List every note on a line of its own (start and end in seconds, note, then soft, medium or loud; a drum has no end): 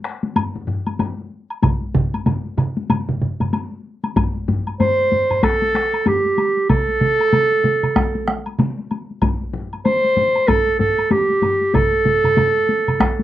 0.04 taiko rim medium
0.04 high woodblock soft
0.23 taiko high medium
0.36 taiko low-mid medium
0.36 taiko high medium
0.36 high woodblock medium
0.56 taiko low-mid medium
0.68 taiko low-mid medium
0.86 taiko high soft
0.86 high woodblock soft
0.99 taiko low-mid loud
0.99 taiko high medium
0.99 high woodblock soft
1.50 high woodblock soft
1.62 taiko loud
1.62 taiko low-mid medium
1.62 taiko mid loud
1.62 taiko high medium
1.62 high woodblock medium
1.94 taiko medium
1.94 taiko low-mid medium
1.94 taiko mid loud
1.94 taiko high soft
2.14 taiko high soft
2.14 high woodblock soft
2.26 taiko low-mid medium
2.26 taiko mid medium
2.26 taiko high medium
2.26 high woodblock soft
2.58 taiko low-mid medium
2.58 taiko mid loud
2.58 high woodblock soft
2.77 taiko high medium
2.90 taiko low-mid medium
2.90 taiko mid medium
2.90 taiko high medium
2.90 high woodblock medium
3.09 taiko low-mid medium
3.09 taiko mid medium
3.22 taiko low-mid medium
3.22 taiko mid medium
3.40 taiko low-mid medium
3.40 taiko mid medium
3.40 taiko high soft
3.40 high woodblock soft
3.53 taiko high medium
3.53 high woodblock soft
4.04 taiko high soft
4.04 high woodblock soft
4.16 taiko loud
4.16 taiko low-mid loud
4.16 taiko high medium
4.16 high woodblock medium
4.36 taiko high soft
4.48 taiko low-mid loud
4.48 taiko high medium
4.67 taiko high soft
4.67 high woodblock soft
4.80 5.39 C5 medium
4.80 taiko low-mid medium
4.80 taiko high medium
4.80 high woodblock soft
4.99 taiko high soft
5.12 taiko low-mid medium
5.12 taiko high medium
5.30 taiko low-mid medium
5.30 taiko high soft
5.30 high woodblock soft
5.43 6.09 A4 medium
5.43 taiko rim medium
5.43 taiko medium
5.43 taiko high medium
5.43 high woodblock medium
5.62 taiko high soft
5.75 taiko rim medium
5.75 taiko high soft
5.93 taiko high soft
5.93 high woodblock soft
6.06 6.69 G4 medium
6.06 taiko low-mid loud
6.06 taiko high medium
6.06 high woodblock soft
6.26 taiko high soft
6.38 taiko high soft
6.38 high woodblock soft
6.57 taiko high soft
6.69 8.55 A4 loud
6.69 taiko loud
6.69 taiko mid medium
6.69 taiko high medium
6.69 high woodblock soft
6.89 taiko high soft
7.01 taiko mid medium
7.01 taiko high medium
7.20 taiko high soft
7.20 high woodblock soft
7.33 taiko mid medium
7.33 taiko high medium
7.33 high woodblock soft
7.52 taiko high soft
7.64 taiko mid medium
7.64 taiko high medium
7.83 taiko mid medium
7.83 taiko high soft
7.83 high woodblock soft
7.96 taiko rim medium
7.96 taiko medium
7.96 taiko high medium
7.96 high woodblock medium
8.15 taiko high soft
8.28 taiko rim medium
8.28 taiko high medium
8.46 taiko high soft
8.46 high woodblock soft
8.59 taiko mid medium
8.59 taiko high medium
8.59 high woodblock soft
8.79 taiko high soft
8.91 taiko high medium
8.91 high woodblock soft
9.11 taiko high soft
9.22 taiko loud
9.22 taiko low-mid loud
9.22 taiko high medium
9.22 high woodblock soft
9.41 taiko high soft
9.54 taiko low-mid loud
9.73 taiko high soft
9.73 high woodblock soft
9.85 10.49 C5 loud
9.85 taiko high medium
9.85 high woodblock soft
10.04 taiko high soft
10.17 taiko low-mid medium
10.17 taiko high medium
10.35 taiko high soft
10.35 high woodblock soft
10.48 10.79 A4 medium
10.48 taiko loud
10.48 taiko low-mid medium
10.48 taiko high medium
10.48 high woodblock medium
10.79 11.13 A4 medium
10.79 taiko low-mid loud
10.79 taiko high medium
10.98 taiko high soft
10.98 high woodblock soft
11.11 11.76 G4 medium
11.11 taiko low-mid loud
11.11 taiko high medium
11.11 high woodblock soft
11.30 taiko high soft
11.42 taiko low-mid loud
11.42 taiko high medium
11.42 high woodblock soft
11.61 taiko high soft
11.74 13.23 A4 loud
11.74 taiko loud
11.74 taiko low-mid medium
11.74 taiko mid loud
11.74 taiko high medium
11.74 high woodblock soft
11.93 taiko high soft
12.05 taiko low-mid medium
12.05 taiko mid medium
12.05 taiko high medium
12.24 taiko low-mid medium
12.24 taiko mid medium
12.24 taiko high soft
12.24 high woodblock soft
12.37 taiko low-mid medium
12.37 taiko mid loud
12.37 taiko high medium
12.37 high woodblock soft
12.56 taiko high soft
12.69 taiko high medium
12.87 taiko low-mid medium
12.87 taiko mid medium
12.87 taiko high soft
12.87 high woodblock soft
13.00 taiko rim medium
13.00 taiko medium
13.00 taiko high medium
13.00 high woodblock medium
13.19 taiko high medium